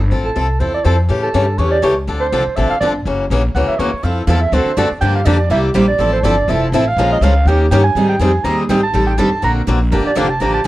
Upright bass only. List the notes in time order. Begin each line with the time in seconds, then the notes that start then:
Already playing: G1
0.12 A1
0.36 C2
0.60 E2
0.85 F2
1.10 A2
1.34 G2
1.58 E2
1.83 C#2
2.08 D2
2.32 C2
2.47 muted upright bass stroke
2.57 A1
2.71 muted upright bass stroke
2.81 G1
3.05 F#1
3.30 A#1
3.55 C#2
3.68 muted upright bass stroke
3.79 D#2
3.93 muted upright bass stroke
4.03 F2
4.27 E2
4.52 D2
4.66 muted upright bass stroke
4.77 F#2
4.91 muted upright bass stroke
5.02 G2
5.26 F2
5.50 C2
5.74 A#1
5.99 A1
6.23 G1
6.48 F1
6.72 A1
6.96 A#1
7.21 C#2
7.45 D#2
7.71 G2
7.95 G#2
8.20 F2
8.44 D#2
8.69 G#1
8.94 A1
9.18 G1
9.32 muted upright bass stroke
9.43 A#1
9.68 A#1
9.92 G1
10.06 muted upright bass stroke
10.16 F1
10.41 A1